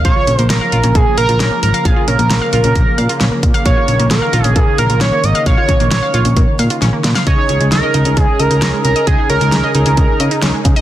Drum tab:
HH |x-xxx-xxx-xxx-xx|x-xxx-xxx-xxx-xx|x-xxx-xxx-xxx-xx|x-xxx-xxx-xxx-xx|
SD |----o-------o---|----o-------o---|----o-------o---|----o-------o-oo|
BD |o-------o-------|o-------o-----o-|o-------o-------|o-o-----o-------|

HH |x-xxx-xxx-xxx-xx|x-xxx-xxx-xxx-xx|
SD |----o-------o---|----o-------o---|
BD |o-------o-------|o-------o-----o-|